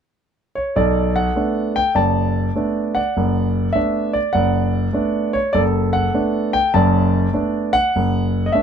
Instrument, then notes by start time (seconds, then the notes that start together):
grand piano
0.55 C#5
0.76 B1 A4 D5
1.16 F#5
1.36 A3 B3 D4
1.76 G5
1.95 F#1 D5 A5
2.56 A3 B3 D4
2.95 D5 F#5
3.17 F#1
3.73 A3 B3 D4 E5
4.13 D5
4.33 F#1 D5 F#5
4.93 A3 B3 D4
5.33 C#5
5.53 F#1 A4 D5
5.93 F#5
6.14 A3 B3 D4
6.53 G5
6.74 F#1 F#2 D5 A5
7.33 A3 B3 D4
7.73 F#5
7.96 F#1
8.46 D#5
8.52 A3 B3 D4 E5